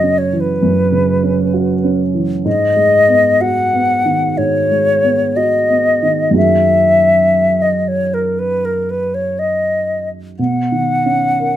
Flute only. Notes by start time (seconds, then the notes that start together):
Already playing: D#5
0.18 C#5
0.40 B4
2.46 D#5
3.41 F#5
4.38 C#5
5.37 D#5
6.36 E5
7.62 D#5
7.88 C#5
8.14 A#4
8.39 B4
8.65 A#4
8.90 B4
9.14 C#5
9.39 D#5
10.39 F#5